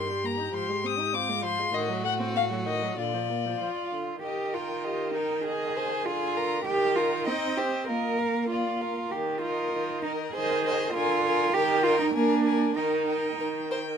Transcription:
Already playing: cello G2, viola D#3, violin G4 C6
0.09 viola G3
0.23 viola A#3, violin A#5
0.39 viola D#4
0.54 cello G#2, viola F3, violin C6
0.69 viola G#3
0.84 viola C4, violin D#6
0.99 viola D#4
1.14 viola C4, violin F4 D6
1.29 viola G#3
1.44 viola F3, violin C6
1.59 viola G#3
1.73 cello A2, viola D#3, violin F#4 D#5
1.89 viola F#3
2.04 viola A3, violin F#5
2.19 viola C4
2.35 viola A3, violin F5
2.50 viola F#3
2.67 viola D#3, violin D#5
2.82 viola F#3
2.98 cello A#2, viola D3, violin F4 D5
3.14 viola F3
3.29 viola A#3
3.45 viola F3
3.61 viola F3, cello F4
3.93 viola D3
4.24 viola D#3, violin G4 D#5, cello G4
4.53 cello F4, violin A#4 G5
4.84 violin G4 D#5
5.15 cello D#4, violin A#4 G5
5.45 cello G#4, violin G#4 D#5
5.77 violin C5 G#5
6.06 viola D3, cello F4, violin G#4 G#5
6.36 violin A#4 A#5
6.66 viola D#3, cello G4, violin G4 G5
6.96 cello F4, violin A#4 A#5
7.26 viola C4, cello D#4, violin D#5 G5
7.57 cello G4, violin C5 D#5
7.88 viola A#3, violin F4 D#5, cello A#4
8.18 violin A#4 F5
8.50 violin F4 D5, cello F4
8.81 violin A#4 F5
9.12 viola D#3, cello G4
9.42 cello F4, violin A#4 D#5
9.73 viola D#3
10.03 cello D#4, violin A#4 D#5
10.34 viola D#3, cello G#4, violin C5 D#5
10.65 violin C5 D#5
10.94 viola D3, cello F4, violin A#4 G#5
11.25 violin A#4 G#5
11.54 viola D#3, cello G4, violin A#4 G5
11.84 cello F4, violin A#4 G5
12.00 cello D#4
12.14 viola A#3, cello D4, violin A#4 G#5
12.45 violin A#4 G#5
12.76 viola D#3, cello D#4, violin A#4 G5
13.08 violin A#4 G5
13.39 viola D#3, violin A#4
13.71 violin C5 G5

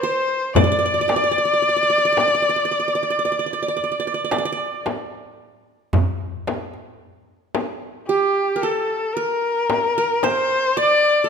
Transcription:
0.00 kamancheh C5, qanun C5
0.54 kamancheh D5, qanun D5, darbuka dum, frame drum
0.64 qanun D5
0.72 qanun D5
0.79 qanun D5
0.86 qanun D5
0.94 qanun D5
1.01 qanun D5
1.08 qanun D5, darbuka tek, frame drum
1.16 qanun D5
1.24 qanun D5
1.31 qanun D5
1.37 qanun D5, darbuka ka
1.45 qanun D5
1.54 qanun D5
1.62 qanun D5
1.69 qanun D5
1.76 qanun D5
1.83 qanun D5
1.90 qanun D5
1.98 qanun D5
2.05 qanun D5
2.12 qanun D5
2.17 qanun D5, darbuka tek, frame drum
2.28 qanun D5
2.35 qanun D5
2.42 qanun D5
2.49 qanun D5
2.56 qanun D5
2.65 qanun D5
2.71 qanun D5
2.80 qanun D5
2.88 qanun D5
2.95 qanun D5
3.03 qanun D5
3.10 qanun D5
3.19 qanun D5
3.25 qanun D5, darbuka ka
3.32 qanun D5
3.39 qanun D5
3.46 qanun D5
3.53 qanun D5
3.63 qanun D5
3.68 qanun D5
3.77 qanun D5, darbuka ka
3.84 qanun D5
3.92 qanun D5
4.00 qanun D5
4.07 qanun D5
4.14 qanun D5
4.24 qanun D5
4.31 qanun D5, darbuka tek, frame drum
4.38 qanun D5
4.45 qanun D5
4.52 qanun D5
4.86 darbuka tek, frame drum
5.93 darbuka dum, frame drum
6.47 darbuka tek, frame drum
6.74 darbuka ka
7.55 darbuka tek, frame drum
8.07 kamancheh G4, qanun G4
8.56 qanun A#4
8.62 kamancheh A4, qanun A4
9.14 kamancheh A#4, qanun A#4
9.70 darbuka tek, frame drum
9.98 qanun A#4
10.23 qanun C5, kamancheh C5, darbuka tek, frame drum
10.77 qanun D5, kamancheh D5, darbuka ka
11.24 qanun A4

